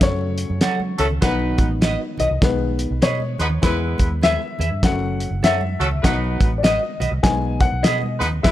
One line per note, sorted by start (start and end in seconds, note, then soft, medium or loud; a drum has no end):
0.01 0.44 F#2 medium
0.01 1.18 C#3 medium
0.01 1.18 F#3 medium
0.01 1.18 A3 medium
0.01 1.02 C#5 medium
0.01 kick loud
0.01 snare loud
0.01 closed hi-hat medium
0.38 closed hi-hat medium
0.50 0.60 F#2 medium
0.61 0.94 F#3 medium
0.61 0.78 A4 medium
0.61 0.79 C#5 medium
0.61 0.79 F#5 medium
0.61 snare loud
0.61 closed hi-hat medium
0.61 muted conga soft
0.80 high conga medium
0.98 1.19 C#2 medium
0.98 1.06 F#3 medium
0.98 1.06 A3 medium
0.98 1.06 C#4 medium
0.98 1.06 A4 loud
0.98 1.05 A4 medium
0.98 closed hi-hat medium
0.98 muted conga soft
0.98 low conga medium
1.10 low conga medium
1.21 1.54 B1 loud
1.21 2.15 D#3 medium
1.21 1.68 F#3 medium
1.21 2.16 F#3 soft
1.21 1.68 B3 loud
1.21 2.16 B3 medium
1.21 1.68 D#4 loud
1.21 1.68 B4 loud
1.21 1.57 B4 medium
1.21 kick medium
1.21 snare loud
1.21 closed hi-hat loud
1.58 1.95 A1 medium
1.58 kick medium
1.58 closed hi-hat medium
1.58 high conga medium
1.81 1.99 F#4 medium
1.81 1.99 B4 medium
1.81 1.99 D#5 medium
1.81 snare loud
1.81 closed hi-hat medium
1.81 high conga medium
2.18 2.29 B1 loud
2.18 2.27 F#4 medium
2.18 2.28 B4 medium
2.18 2.28 D#5 medium
2.18 2.43 D#5 medium
2.18 closed hi-hat medium
2.18 muted conga soft
2.18 low conga medium
2.31 2.41 C2 medium
2.42 2.85 B1 loud
2.42 2.86 D#3 medium
2.42 2.86 G#3 medium
2.42 2.87 B3 medium
2.42 2.99 B4 medium
2.42 kick loud
2.42 snare loud
2.42 closed hi-hat medium
2.79 closed hi-hat medium
2.79 muted conga soft
2.91 3.01 B1 medium
3.02 3.35 B2 loud
3.02 3.19 G#4 medium
3.02 3.19 B4 medium
3.02 3.65 C#5 loud
3.02 3.20 D#5 medium
3.02 snare loud
3.02 closed hi-hat medium
3.02 muted conga soft
3.20 high conga medium
3.38 3.60 D#2 medium
3.38 3.47 G#3 medium
3.38 3.47 B3 loud
3.38 3.47 D#4 medium
3.38 3.47 B4 loud
3.38 snare soft
3.38 closed hi-hat medium
3.38 low conga medium
3.50 low conga medium
3.62 3.95 E2 loud
3.62 4.56 G#3 medium
3.62 4.09 G#3 loud
3.62 4.09 B3 loud
3.62 4.56 B3 medium
3.62 4.55 E4 medium
3.62 4.09 E4 medium
3.62 4.09 B4 loud
3.62 4.25 B4 medium
3.62 kick loud
3.62 snare loud
3.62 closed hi-hat loud
3.62 muted conga soft
3.98 4.36 D#2 medium
3.98 kick medium
3.98 closed hi-hat medium
3.98 high conga medium
4.21 4.40 G#4 medium
4.21 4.40 B4 medium
4.21 4.85 E5 loud
4.21 4.40 E5 medium
4.21 snare loud
4.21 closed hi-hat medium
4.21 muted conga soft
4.21 high conga medium
4.59 4.70 E2 medium
4.59 4.68 G#4 medium
4.59 4.68 B4 medium
4.59 4.68 E5 medium
4.59 closed hi-hat medium
4.59 low conga medium
4.71 4.84 G2 medium
4.83 5.25 F#1 loud
4.83 5.27 F#3 medium
4.83 5.27 A3 medium
4.83 5.28 C#4 medium
4.83 5.46 F#5 loud
4.83 kick loud
4.83 snare loud
4.83 closed hi-hat loud
5.20 closed hi-hat medium
5.31 5.41 F#1 medium
5.42 5.75 F#2 medium
5.42 5.60 A4 medium
5.42 5.60 C#5 medium
5.42 6.06 E5 loud
5.42 5.60 F#5 loud
5.42 snare loud
5.42 closed hi-hat medium
5.42 muted conga soft
5.61 high conga medium
5.80 6.00 C#2 medium
5.80 5.87 F#3 loud
5.80 5.87 A3 medium
5.80 5.87 C#4 medium
5.80 5.87 A4 loud
5.80 closed hi-hat medium
5.80 muted conga soft
5.80 low conga medium
5.91 low conga medium
6.02 6.36 B1 loud
6.02 6.49 F#3 loud
6.02 6.47 F#3 medium
6.02 6.49 B3 loud
6.02 6.47 B3 soft
6.02 6.49 D#4 loud
6.02 6.48 D#4 medium
6.02 6.49 B4 loud
6.02 6.55 F#5 medium
6.02 kick loud
6.02 snare loud
6.02 closed hi-hat loud
6.02 muted conga soft
6.40 6.77 A1 medium
6.40 kick loud
6.40 closed hi-hat medium
6.40 high conga medium
6.58 6.63 D5 medium
6.63 6.80 F#4 medium
6.63 6.81 B4 medium
6.63 6.98 D#5 medium
6.63 6.81 D#5 medium
6.63 snare loud
6.63 closed hi-hat loud
6.63 muted conga soft
6.63 high conga medium
7.00 7.10 B1 medium
7.00 7.08 F#4 medium
7.00 7.09 B4 medium
7.00 7.09 D#5 medium
7.00 closed hi-hat medium
7.00 muted conga soft
7.00 low conga medium
7.12 7.22 C2 medium
7.23 7.66 B1 loud
7.23 7.67 G#3 medium
7.23 7.67 B3 medium
7.23 7.68 D#4 medium
7.23 7.61 G#5 loud
7.23 kick loud
7.23 snare loud
7.23 closed hi-hat loud
7.60 7.82 F#5 loud
7.60 kick loud
7.60 closed hi-hat medium
7.60 muted conga soft
7.72 7.82 B1 medium
7.83 8.22 B2 loud
7.83 8.00 G#4 medium
7.83 8.01 B4 medium
7.83 8.45 D#5 medium
7.83 8.01 D#5 loud
7.83 snare loud
7.83 closed hi-hat loud
8.03 high conga medium
8.19 8.41 D#2 medium
8.19 8.27 G#3 medium
8.19 8.27 B3 medium
8.19 8.27 D#4 loud
8.19 8.27 B4 loud
8.19 snare soft
8.19 closed hi-hat medium
8.19 muted conga soft
8.19 low conga medium
8.33 low conga medium
8.43 8.52 E2 loud
8.43 8.52 G#3 medium
8.43 8.52 B3 loud
8.43 8.52 B3 medium
8.43 8.52 E4 loud
8.43 8.52 E4 medium
8.43 8.52 B4 loud
8.43 8.52 E5 medium
8.43 kick loud
8.43 snare loud
8.43 closed hi-hat loud
8.43 muted conga soft